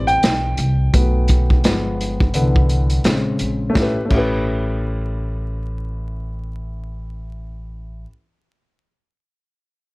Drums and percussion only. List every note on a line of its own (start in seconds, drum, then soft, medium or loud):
0.08 closed hi-hat soft
0.23 snare loud
0.23 closed hi-hat medium
0.57 closed hi-hat medium
0.94 kick loud
0.94 closed hi-hat medium
1.28 kick medium
1.28 closed hi-hat medium
1.50 kick medium
1.64 snare loud
1.64 closed hi-hat medium
2.01 closed hi-hat medium
2.20 kick medium
2.34 closed hi-hat medium
2.56 kick medium
2.69 closed hi-hat medium
2.90 closed hi-hat soft
3.04 snare loud
3.04 closed hi-hat medium
3.39 closed hi-hat medium
3.75 kick medium
3.75 snare medium
4.10 kick medium
4.10 crash medium